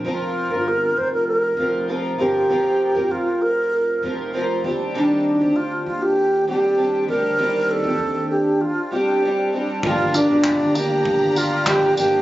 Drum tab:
TB |--------|--------|--------|--------|
CP |--------|--------|--------|--------|
BD |--------|--------|--------|--------|

TB |-x-x-x-x|
CP |--x---x-|
BD |o-o-o-o-|